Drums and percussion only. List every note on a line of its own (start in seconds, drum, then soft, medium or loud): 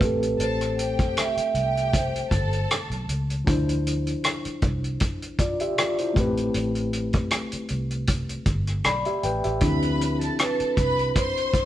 0.01 kick medium
0.01 closed hi-hat medium
0.23 closed hi-hat soft
0.40 closed hi-hat medium
0.61 cross-stick soft
0.61 closed hi-hat soft
0.79 closed hi-hat medium
0.99 kick medium
0.99 closed hi-hat soft
1.17 cross-stick medium
1.17 closed hi-hat medium
1.37 closed hi-hat soft
1.55 closed hi-hat soft
1.77 closed hi-hat soft
1.93 kick medium
1.93 closed hi-hat medium
2.16 closed hi-hat soft
2.31 kick medium
2.31 closed hi-hat medium
2.53 closed hi-hat soft
2.71 cross-stick medium
2.71 closed hi-hat medium
2.91 closed hi-hat soft
3.09 closed hi-hat medium
3.30 closed hi-hat soft
3.47 kick loud
3.47 closed hi-hat medium
3.69 closed hi-hat soft
3.87 closed hi-hat medium
4.07 closed hi-hat soft
4.24 cross-stick loud
4.24 closed hi-hat medium
4.45 closed hi-hat soft
4.62 kick medium
4.62 closed hi-hat medium
4.84 closed hi-hat soft
5.00 kick medium
5.00 closed hi-hat medium
5.22 closed hi-hat soft
5.39 kick medium
5.39 closed hi-hat medium
5.60 closed hi-hat soft
5.78 cross-stick loud
5.78 closed hi-hat medium
5.98 closed hi-hat soft
6.16 kick medium
6.16 closed hi-hat medium
6.37 closed hi-hat soft
6.54 closed hi-hat medium
6.75 closed hi-hat soft
6.93 closed hi-hat medium
7.13 kick medium
7.13 closed hi-hat soft
7.31 cross-stick medium
7.31 closed hi-hat medium
7.52 closed hi-hat soft
7.68 closed hi-hat soft
7.90 closed hi-hat soft
8.07 kick medium
8.07 closed hi-hat medium
8.29 closed hi-hat soft
8.46 kick medium
8.46 closed hi-hat medium
8.67 cross-stick soft
8.67 closed hi-hat soft
8.84 cross-stick loud
8.84 closed hi-hat medium
9.05 closed hi-hat soft
9.23 closed hi-hat medium
9.44 closed hi-hat soft
9.61 kick medium
9.61 closed hi-hat medium
9.82 closed hi-hat soft
10.01 closed hi-hat medium
10.21 closed hi-hat soft
10.39 cross-stick loud
10.39 closed hi-hat medium
10.60 closed hi-hat soft
10.77 kick medium
10.77 closed hi-hat medium
10.99 closed hi-hat soft
11.16 kick medium
11.16 closed hi-hat medium
11.37 closed hi-hat soft
11.54 kick medium
11.54 closed hi-hat medium